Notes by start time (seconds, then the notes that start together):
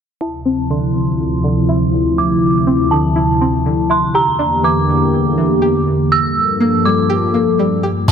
0.21 D2 C3 F3 E4 A5
0.45 C4
0.70 D3 C6
1.44 D3
1.69 E4
2.18 D6
2.67 C4
2.91 D3 A5
3.16 E4
3.41 C4
3.66 D3
3.90 E4 C6
4.14 E2 D3 A#3 G4 A#5
4.39 D4
4.63 E3 D6
5.38 E3
5.62 G4
6.11 G2 F3 A#3 A4 E6
6.60 A#3
6.85 G3 D6
7.10 G4
7.34 A#3
7.59 G3
7.83 G4
8.08 D2 D3 C4 E4 F4 A5, cajon bass, downlifter